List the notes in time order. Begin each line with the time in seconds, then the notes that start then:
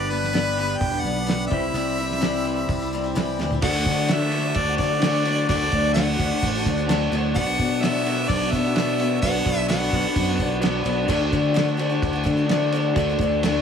Already playing: G1 G2 D3 G3 B3 D4 G4 B4 D5
0.10 G3 B3 D4 G4 B4
0.24 snare
0.33 G2 D3 G3 B3 D4 G4, snare, open hi-hat
0.56 G2 D3 G3 B3 D4 G4
0.78 E1 G5, kick, open hi-hat
0.91 G3 B3 D4 G4
1.01 B1 G3 F#5
1.05 B3 D4 G4
1.16 G3 B3 D4 G4
1.26 G2 D3 G3 B3 D4 G4, snare, open hi-hat
1.47 C3 E3 C4 E4 G4 C5 E5
1.51 C2 G3 E4 G4 C5 E5, kick
1.62 G3 E4 G4
1.74 C2 C3 E3 G3 E4 G4, open hi-hat
1.98 E3 G3 E4 G4
2.11 snare
2.20 C3 E3 G3 C4 E4 G4, snare, open hi-hat
2.44 E3 G3 E4 G4
2.56 G3 E4 G4
2.68 C2, kick, open hi-hat
2.80 G3 E4 G4
2.93 E3 G3 E4 G4
3.04 G3 E4 G4
3.15 C2 C3 E3 G3 E4 G4 C5 E5, snare, open hi-hat
3.39 D2 E3 G3 E4 G4, snare
3.51 G3 E4 G4, floor tom
3.61 D2 D3 A3 D4 F#4 A4 D5 F#5, kick, crash
3.65 F#3 A3 D4 F#4
3.75 A3 D4 F#4
3.85 D3 F#3, kick, crash
3.90 A3 D4 F#4
4.08 D3 F#3 A3 D4 E5, snare, crash
4.13 F#4
4.21 A3 D4 F#4
4.31 D4 F#4, crash
4.35 F#3 A3 D4 F#4
4.46 A3 D4 F#4
4.54 D2 D5, kick, crash
4.68 A3 D4 F#4
4.78 D3 F#3 A3 D5, kick, crash
4.83 D4 F#4
4.93 A3 D4 F#4
5.01 D3 F#3 A3, snare, crash
5.05 F#3 A3 D4 F#4
5.24 F#3 A3 F#4, crash
5.28 D4 F#4
5.49 D2 D3 F#3 A3 D4 F#4 A4 D5, kick, crash
5.61 A3 D4 F#4
5.72 D2 F#3 A3 D4 F#4, kick, crash
5.94 D3 F#3 A3 D4 F#4 F#5, snare, crash
6.08 A3 D4 F#4
6.16 D2 F#3 A3 D4 F#4, kick, crash
6.31 A3 D4 F#4
6.42 A1, kick, crash
6.55 A3 D4 F#4
6.66 D2 F#3 A3 D4 F#4, kick, crash
6.78 A3 D4 F#4
6.88 D3 F#3 A3 D4 F#4 A5, snare, crash
7.10 D2 F#3 A3 F#4, crash
7.14 D4 F#4
7.35 B1 B2 F#3 B3 D4 F#4 B4 D5 F#5, kick, crash
7.46 B3 D4 F#4
7.59 B2 F#3 B3 D4 F#4, kick, crash
7.80 B2 F#3 D4 E5, snare, crash
7.84 F#3 B3 D4 F#4
8.05 F#3 B3 D4 F#4, crash
8.17 B3 D4 F#4
8.29 B1 D5, kick, crash
8.40 B3 D4 F#4
8.51 B2 F#3 B3 E5, kick, crash
8.56 D4 F#4
8.66 B3 D4 F#4
8.73 B2 F#3 B3 F#4, snare, crash
8.78 B2 F#3 B3 D4 F#4
8.98 F#3 F#4, crash
9.02 B3 D4 F#4
9.20 B1 E4 F#4 B4 D5 F#5, kick, crash
9.25 B2 F#3 B3 D4 F#4
9.36 B3 D4 F#4
9.46 B1 F#3 B3 D4 F#4, kick, crash
9.68 B2 F#3 B3 D4 F#4 F#5, snare, crash
9.90 B1 F#3 B3 F#4, kick, crash
9.94 D4 F#4
10.06 B3 D4 F#4
10.16 F#2, kick, crash
10.28 B3 D4 F#4
10.38 B1 F#3 B3 D4 F#4, kick, crash
10.50 B3 D4 F#4
10.61 B2 F#3 B3 D4 F#4 B4 D5, snare, crash
10.84 B1 F#3 B3 D4 F#4, crash
11.05 D2 D3 F#3 A3 D4 F#4 A4, kick, crash
11.09 D4 F#4 D5
11.20 A3 D4 F#4
11.32 D3 A3 D4 F#4, kick, crash
11.53 D3 F#3 A3 D4, crash
11.57 F#4, snare
11.68 A3 D4 F#4
11.77 D3 A3 D4 F#4, crash
11.81 F#4
11.89 A3 D4 F#4
12.02 D2, kick, crash
12.13 A3 D4 F#4
12.24 D3 A3 D4 F#4, kick, crash
12.37 A3 D4 F#4
12.47 D3 F#3 A3 D4, snare, crash
12.52 F#4
12.71 D3 A3 F#4, crash
12.76 D4 F#4
12.93 D2 D3 F#3 D4 F#4 A4, kick, crash
12.97 D3 A3 D4 F#4 D5
13.09 A3 D4 F#4
13.19 D2 D3 A3 D4, kick, crash
13.23 F#4
13.40 D3 F#3, snare, crash
13.44 A3 D4 F#4